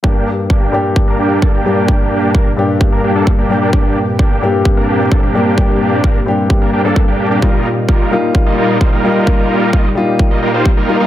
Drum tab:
BD |o-o-o-o-|o-o-o-o-|o-o-o-o-|o-o-o-o-|

BD |o-o-o-o-|o-o-o-o-|